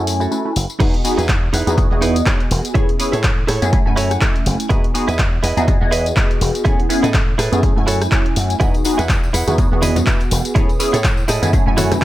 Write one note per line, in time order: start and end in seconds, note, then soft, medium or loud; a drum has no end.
0.00 0.26 F#2 medium
0.00 0.29 A3 medium
0.00 0.29 C#4 medium
0.00 0.29 E4 medium
0.00 0.30 G#5 medium
0.07 open hi-hat loud
0.07 tambourine medium
0.20 0.50 E4 medium
0.20 0.51 F#4 medium
0.20 0.51 A4 medium
0.20 tambourine soft
0.31 0.43 A3 medium
0.31 0.43 C#4 medium
0.31 0.43 E4 medium
0.31 0.43 B4 medium
0.31 tambourine soft
0.45 0.53 A3 medium
0.45 0.53 C#4 medium
0.45 0.54 E4 medium
0.45 0.54 B4 medium
0.56 0.65 F#1 medium
0.56 open hi-hat medium
0.56 tambourine medium
0.70 tambourine soft
0.80 0.89 E2 loud
0.80 1.02 B3 medium
0.80 0.94 D#4 loud
0.80 1.02 D#4 medium
0.80 0.94 E4 loud
0.80 1.02 F#4 medium
0.80 1.02 G#4 medium
0.80 0.94 G#4 loud
0.80 0.94 B4 loud
0.80 kick loud
0.80 closed hi-hat medium
0.80 tambourine soft
0.80 crash loud
0.94 closed hi-hat soft
1.04 1.21 B3 medium
1.04 1.21 D#4 medium
1.04 1.21 F#4 medium
1.04 1.21 G#4 loud
1.04 muted clean electric guitar stroke soft
1.04 open hi-hat loud
1.04 tambourine medium
1.18 1.48 E2 loud
1.18 1.36 D#4 medium
1.18 1.36 E4 medium
1.18 1.36 G#4 medium
1.18 1.36 B4 medium
1.18 closed hi-hat medium
1.18 tambourine soft
1.29 kick loud
1.29 clap loud
1.29 closed hi-hat medium
1.53 1.62 E2 medium
1.53 1.77 D#4 medium
1.53 1.78 E4 medium
1.53 1.78 G#4 medium
1.53 1.78 B4 loud
1.53 open hi-hat medium
1.53 tambourine medium
1.67 1.91 E2 medium
1.67 1.75 B3 medium
1.67 1.75 D#4 medium
1.67 1.75 F#4 medium
1.67 1.76 G#4 medium
1.67 closed hi-hat medium
1.67 tambourine soft
1.77 1.88 B3 medium
1.77 1.88 D#4 medium
1.77 1.88 F#4 medium
1.77 1.88 G#4 loud
1.77 kick loud
1.77 closed hi-hat medium
1.77 tambourine soft
1.90 2.21 E2 loud
1.90 2.72 B3 medium
1.90 2.73 F#4 medium
1.90 2.73 G#4 loud
1.90 2.72 D#5 medium
2.01 2.16 D#4 loud
2.01 2.16 E4 loud
2.01 2.16 G#4 loud
2.01 2.16 B4 loud
2.01 open hi-hat loud
2.01 tambourine medium
2.16 closed hi-hat medium
2.16 tambourine soft
2.26 2.40 D#4 medium
2.26 2.40 E4 medium
2.26 2.40 G#4 medium
2.26 2.41 C#5 loud
2.26 kick loud
2.26 clap loud
2.26 closed hi-hat medium
2.26 tambourine soft
2.40 closed hi-hat soft
2.50 2.60 E1 medium
2.50 muted clean electric guitar stroke soft
2.50 open hi-hat loud
2.50 tambourine medium
2.65 closed hi-hat medium
2.65 tambourine soft
2.74 2.84 A2 loud
2.74 2.97 B3 medium
2.74 2.97 C#4 medium
2.74 2.89 E4 loud
2.74 2.97 E4 medium
2.74 2.89 G#4 loud
2.74 2.97 G#4 medium
2.74 2.89 A4 loud
2.74 2.89 C#5 loud
2.74 kick loud
2.74 closed hi-hat medium
2.74 tambourine soft
2.89 closed hi-hat soft
2.99 3.16 B3 medium
2.99 3.16 C#4 medium
2.99 3.16 E4 medium
2.99 3.16 G#4 loud
2.99 muted clean electric guitar stroke soft
2.99 open hi-hat loud
2.99 tambourine medium
3.12 3.43 A2 loud
3.12 3.30 E4 medium
3.12 3.31 G#4 medium
3.12 3.31 A4 medium
3.12 3.31 C#5 loud
3.12 closed hi-hat medium
3.12 tambourine soft
3.24 kick loud
3.24 clap loud
3.24 closed hi-hat medium
3.24 tambourine soft
3.47 3.58 A2 medium
3.47 3.72 E4 medium
3.47 3.73 G#4 medium
3.47 3.73 A4 medium
3.47 3.73 C#5 loud
3.47 cross-stick medium
3.47 open hi-hat loud
3.47 tambourine medium
3.62 3.86 F#2 medium
3.62 3.70 B3 medium
3.62 3.70 C#4 medium
3.62 3.70 E4 medium
3.62 3.71 G#4 medium
3.62 closed hi-hat medium
3.62 tambourine soft
3.72 3.83 A3 medium
3.72 3.83 C#4 medium
3.72 3.83 E4 medium
3.72 3.83 G#4 loud
3.72 kick loud
3.72 closed hi-hat medium
3.72 tambourine soft
3.86 4.16 F#2 loud
3.86 4.67 A3 medium
3.86 4.68 C#4 medium
3.86 4.68 E4 medium
3.86 4.68 G#5 loud
3.96 4.11 E4 loud
3.96 4.11 F#4 loud
3.96 4.11 A4 loud
3.96 4.11 C#5 loud
3.96 4.10 G#5 medium
3.96 open hi-hat loud
3.96 tambourine medium
4.11 4.21 F#5 medium
4.11 cross-stick medium
4.11 closed hi-hat medium
4.11 tambourine soft
4.21 4.35 E4 medium
4.21 4.35 F#4 medium
4.21 4.36 A4 medium
4.21 4.36 D#5 loud
4.21 4.46 E5 medium
4.21 kick loud
4.21 clap loud
4.21 closed hi-hat medium
4.21 tambourine soft
4.36 closed hi-hat soft
4.45 4.55 F#1 medium
4.45 muted clean electric guitar stroke soft
4.45 open hi-hat loud
4.45 tambourine medium
4.60 closed hi-hat medium
4.60 tambourine soft
4.69 4.79 E2 loud
4.69 4.92 B3 medium
4.69 4.92 D#4 medium
4.69 4.84 E4 loud
4.69 4.92 F#4 medium
4.69 4.84 G#4 loud
4.69 4.92 G#4 medium
4.69 4.84 B4 loud
4.69 4.85 D#5 loud
4.69 kick loud
4.69 closed hi-hat medium
4.69 tambourine soft
4.84 closed hi-hat soft
4.94 5.11 B3 medium
4.94 5.11 D#4 medium
4.94 5.11 F#4 medium
4.94 5.11 G#4 loud
4.94 muted clean electric guitar stroke soft
4.94 open hi-hat loud
4.94 tambourine medium
5.08 5.38 E2 loud
5.08 5.26 E4 medium
5.08 5.26 G#4 medium
5.08 5.26 B4 medium
5.08 5.26 D#5 loud
5.08 closed hi-hat medium
5.08 tambourine soft
5.19 kick loud
5.19 clap loud
5.19 closed hi-hat medium
5.19 tambourine soft
5.43 5.53 E2 medium
5.43 5.68 E4 medium
5.43 5.68 G#4 medium
5.43 5.68 B4 medium
5.43 5.68 D#5 loud
5.43 open hi-hat loud
5.43 tambourine medium
5.57 5.81 E2 medium
5.57 5.65 B3 medium
5.57 5.65 D#4 medium
5.57 5.66 F#4 medium
5.57 5.66 G#4 medium
5.57 closed hi-hat medium
5.57 tambourine soft
5.67 5.78 B3 medium
5.67 5.78 D#4 medium
5.67 5.78 F#4 medium
5.67 5.79 G#4 loud
5.67 kick loud
5.67 closed hi-hat medium
5.67 tambourine soft
5.81 6.11 E2 loud
5.81 6.63 B3 medium
5.81 6.63 F#4 medium
5.81 6.63 G#4 loud
5.81 6.63 D#5 medium
5.91 6.06 E4 loud
5.91 6.06 G#4 loud
5.91 6.06 B4 loud
5.91 6.06 D#5 loud
5.91 open hi-hat loud
5.91 tambourine medium
6.06 closed hi-hat medium
6.06 tambourine soft
6.16 6.30 E4 medium
6.16 6.30 G#4 medium
6.16 6.30 B4 medium
6.16 6.31 D#5 loud
6.16 kick loud
6.16 clap loud
6.16 closed hi-hat medium
6.31 closed hi-hat soft
6.40 6.50 E1 medium
6.40 muted clean electric guitar stroke soft
6.40 open hi-hat loud
6.40 tambourine medium
6.55 closed hi-hat medium
6.55 tambourine soft
6.65 6.75 A2 loud
6.65 6.87 B3 medium
6.65 6.87 C#4 medium
6.65 6.79 E4 loud
6.65 6.87 E4 medium
6.65 6.79 G#4 loud
6.65 6.87 G#4 loud
6.65 6.79 A4 loud
6.65 6.80 C#5 loud
6.65 kick loud
6.65 closed hi-hat medium
6.65 tambourine soft
6.80 closed hi-hat soft
6.89 7.06 B3 medium
6.89 7.06 C#4 medium
6.89 7.06 E4 medium
6.89 7.06 G#4 loud
6.89 muted clean electric guitar stroke soft
6.89 open hi-hat loud
6.89 tambourine medium
7.03 7.33 A2 loud
7.03 7.21 E4 medium
7.03 7.21 G#4 medium
7.03 7.21 A4 medium
7.03 7.22 D#5 loud
7.03 closed hi-hat medium
7.03 tambourine soft
7.14 kick loud
7.14 clap loud
7.14 closed hi-hat medium
7.38 7.48 A2 medium
7.38 7.63 E4 medium
7.38 7.63 G#4 medium
7.38 7.63 A4 medium
7.38 7.64 B4 loud
7.38 cross-stick medium
7.38 open hi-hat medium
7.38 tambourine medium
7.52 7.77 F#2 medium
7.52 7.60 B3 medium
7.52 7.61 C#4 medium
7.52 7.61 E4 medium
7.52 7.61 G#4 medium
7.52 closed hi-hat medium
7.52 tambourine soft
7.63 7.73 A3 medium
7.63 7.74 C#4 medium
7.63 7.74 E4 medium
7.63 7.74 G#4 loud
7.63 kick loud
7.63 closed hi-hat medium
7.63 tambourine soft
7.76 8.06 F#2 loud
7.76 8.58 A3 medium
7.76 8.58 C#4 medium
7.76 8.58 E4 medium
7.76 8.58 G#5 loud
7.87 8.01 E4 loud
7.87 8.01 F#4 loud
7.87 8.01 A4 loud
7.87 8.02 C#5 loud
7.87 open hi-hat loud
7.87 tambourine medium
8.02 cross-stick medium
8.02 closed hi-hat medium
8.02 tambourine soft
8.11 8.25 E4 medium
8.11 8.26 F#4 medium
8.11 8.26 A4 medium
8.11 8.26 C#5 loud
8.11 kick loud
8.11 clap loud
8.11 closed hi-hat medium
8.26 closed hi-hat soft
8.36 8.54 F#2 medium
8.36 muted clean electric guitar stroke soft
8.36 open hi-hat medium
8.36 tambourine medium
8.50 closed hi-hat soft
8.50 tambourine soft
8.60 8.70 E2 loud
8.60 8.82 B3 medium
8.60 8.82 D#4 medium
8.60 8.74 E4 loud
8.60 8.83 F#4 medium
8.60 8.74 G#4 loud
8.60 8.83 G#4 medium
8.60 8.75 B4 loud
8.60 8.75 D#5 loud
8.60 kick loud
8.60 closed hi-hat medium
8.60 tambourine soft
8.74 closed hi-hat soft
8.74 tambourine soft
8.84 9.01 B3 medium
8.84 9.01 D#4 medium
8.84 9.01 F#4 medium
8.84 9.02 G#4 loud
8.84 muted clean electric guitar stroke soft
8.84 open hi-hat loud
8.84 tambourine medium
8.98 9.28 E2 loud
8.98 9.16 E4 medium
8.98 9.16 G#4 medium
8.98 9.16 B4 medium
8.98 9.17 F#5 loud
8.98 closed hi-hat medium
8.98 tambourine soft
9.09 kick loud
9.09 clap loud
9.09 closed hi-hat medium
9.09 tambourine soft
9.09 tambourine medium
9.24 tambourine soft
9.33 9.43 E2 medium
9.33 9.58 E4 medium
9.33 9.58 G#4 medium
9.33 9.58 B4 medium
9.33 9.59 F#5 loud
9.33 open hi-hat medium
9.33 tambourine medium
9.33 tambourine loud
9.47 9.71 E2 medium
9.47 9.56 B3 medium
9.47 9.56 D#4 medium
9.47 9.56 F#4 medium
9.47 9.56 G#4 medium
9.47 closed hi-hat medium
9.47 tambourine soft
9.47 high conga medium
9.58 9.69 B3 medium
9.58 9.69 D#4 medium
9.58 9.69 F#4 medium
9.58 9.69 G#4 loud
9.58 kick loud
9.58 closed hi-hat medium
9.58 tambourine soft
9.71 10.01 E2 loud
9.71 10.53 B3 medium
9.71 10.54 F#4 medium
9.71 10.54 G#4 loud
9.82 9.96 E4 loud
9.82 9.96 G#4 loud
9.82 9.96 B4 loud
9.82 9.97 D#5 loud
9.82 open hi-hat loud
9.82 tambourine medium
9.82 high conga medium
9.96 closed hi-hat medium
9.96 tambourine soft
9.96 low conga loud
10.06 10.20 E4 medium
10.06 10.21 G#4 medium
10.06 10.21 B4 medium
10.06 10.21 E5 loud
10.06 kick loud
10.06 clap loud
10.06 closed hi-hat medium
10.06 tambourine medium
10.20 closed hi-hat soft
10.20 tambourine soft
10.31 10.40 E1 medium
10.31 muted clean electric guitar stroke soft
10.31 open hi-hat loud
10.31 tambourine medium
10.45 closed hi-hat medium
10.45 tambourine soft
10.55 10.65 A2 loud
10.55 10.77 B3 medium
10.55 10.77 C#4 medium
10.55 10.69 E4 loud
10.55 10.78 E4 medium
10.55 10.69 G#4 loud
10.55 10.78 G#4 loud
10.55 10.70 A4 loud
10.55 10.70 C#5 loud
10.55 kick loud
10.55 closed hi-hat medium
10.55 tambourine soft
10.55 tambourine medium
10.69 closed hi-hat soft
10.69 tambourine soft
10.79 10.96 B3 medium
10.79 10.96 C#4 medium
10.79 10.96 E4 medium
10.79 10.96 G#4 loud
10.79 muted clean electric guitar stroke soft
10.79 open hi-hat loud
10.79 tambourine medium
10.93 11.23 A2 loud
10.93 11.11 E4 medium
10.93 11.11 G#4 medium
10.93 11.12 A4 medium
10.93 11.12 C#5 loud
10.93 closed hi-hat medium
10.93 tambourine soft
11.04 kick loud
11.04 clap loud
11.04 closed hi-hat medium
11.04 tambourine medium
11.04 tambourine soft
11.17 tambourine soft
11.28 11.38 A2 medium
11.28 11.53 E4 medium
11.28 11.53 G#4 medium
11.28 11.53 A4 medium
11.28 11.54 D#5 loud
11.28 cross-stick medium
11.28 open hi-hat medium
11.28 tambourine medium
11.42 11.66 F#2 medium
11.42 11.51 B3 medium
11.42 11.51 C#4 medium
11.42 11.51 E4 medium
11.42 11.51 G#4 medium
11.42 closed hi-hat medium
11.42 tambourine soft
11.42 high conga medium
11.53 11.64 A3 medium
11.53 11.64 C#4 medium
11.53 11.64 E4 medium
11.53 11.64 G#4 loud
11.53 kick loud
11.53 closed hi-hat medium
11.53 tambourine soft
11.53 tambourine medium
11.66 11.96 F#2 loud
11.66 12.04 A3 medium
11.66 12.04 C#4 medium
11.66 12.04 E4 medium
11.66 12.04 G#5 loud
11.77 11.91 E4 loud
11.77 11.91 F#4 loud
11.77 11.92 A4 loud
11.77 11.92 C#5 loud
11.77 open hi-hat loud
11.77 tambourine loud
11.77 tambourine medium
11.77 high conga medium
11.91 cross-stick medium
11.91 closed hi-hat medium
11.91 tambourine soft
11.91 low conga loud
12.01 12.04 E4 medium